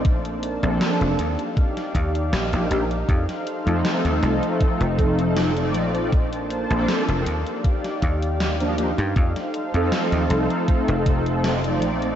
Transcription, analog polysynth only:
X:1
M:4/4
L:1/16
Q:1/4=79
K:Fmix
V:1 name="Analog polysynth"
z3 [F,B,CDA]3 z6 z [F,B,DEG] [F,B,DEG] z | z3 [F,A,CEA]8- [F,A,CEA]2 [F,A,CEd]3 | z3 [F,B,CDA]3 z6 z [F,B,DEG] [F,B,DEG] z | z3 [F,A,CEA]8- [F,A,CEA]2 [F,A,CEd]3 |]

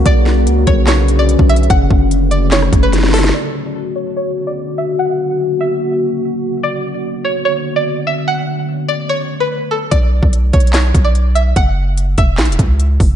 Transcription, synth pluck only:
X:1
M:4/4
L:1/16
Q:1/4=146
K:Bm
V:1 name="Synth pluck"
d4 z2 c2 c3 d3 e2 | f4 z2 d2 c3 B3 A2 | d4 z2 c2 c3 d3 e2 | f4 z2 e8- e2 |
d4 z2 c2 c3 d3 e2 | f4 z2 d2 c3 B3 A2 | d4 z2 c2 c3 d3 e2 | f4 z2 e8- e2 |]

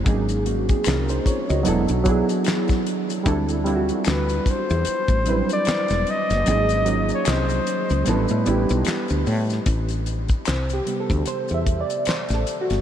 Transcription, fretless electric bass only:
X:1
M:4/4
L:1/16
Q:"Swing 16ths" 1/4=75
K:Dmix
V:1 name="Fretless electric bass" clef=bass
^G,,,4 C,,2 z ^C,, E,,, B,,,2 z4 z | D,,4 D,,2 z E,, z A,,,2 z2 E,,, z F,,, | ^G,,,4 C,,2 z ^C,, A,,, A,, A,,, B,,, z D,, A,,2 | A,,,4 C,,2 z D,, z E,,2 z2 A,,, z G,,, |]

